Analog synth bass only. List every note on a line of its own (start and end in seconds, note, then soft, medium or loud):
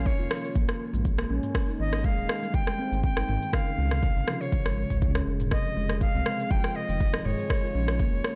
0.00 0.13 A#1 loud
0.19 0.28 F1 loud
0.55 0.65 A#1 medium
0.93 1.25 A#1 medium
1.30 1.39 A#1 medium
1.79 2.12 G#1 loud
2.18 2.26 D#1 loud
2.54 2.63 G#1 medium
2.92 3.23 G#1 medium
3.28 3.38 G#1 medium
3.78 4.10 C#2 loud
4.16 4.24 G#1 loud
4.52 4.85 G#1 medium
4.90 5.22 C#2 medium
5.27 5.59 F1 loud
5.76 6.08 F1 loud
6.14 6.23 C2 loud
6.51 6.60 F1 medium
6.89 7.20 F1 medium
7.25 7.35 F1 medium
7.75 8.07 A#1 loud
8.13 8.21 F1 loud